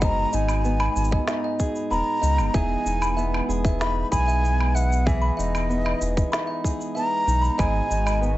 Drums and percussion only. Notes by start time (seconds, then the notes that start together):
0.02 kick, shaker
0.33 shaker
0.48 low woodblock, shaker
0.65 shaker
0.80 low woodblock
0.96 shaker
1.04 shaker
1.12 kick
1.27 snare, shaker
1.60 kick, shaker
1.76 shaker
1.92 shaker
2.23 shaker
2.38 low woodblock, shaker
2.54 kick, shaker
2.86 shaker
3.02 low woodblock, shaker
3.18 shaker
3.34 low woodblock
3.50 shaker
3.65 kick, shaker
3.81 snare, shaker
4.12 kick, shaker
4.29 shaker
4.45 shaker
4.61 low woodblock
4.76 shaker
4.92 shaker
5.07 kick, shaker
5.40 shaker
5.55 low woodblock, shaker
5.71 shaker
5.86 low woodblock
6.02 shaker
6.17 kick, shaker
6.33 snare, shaker
6.64 kick, shaker
6.81 shaker
6.97 shaker
7.28 shaker
7.44 shaker
7.59 kick, low woodblock, shaker
7.91 shaker
8.07 low woodblock, shaker
8.23 shaker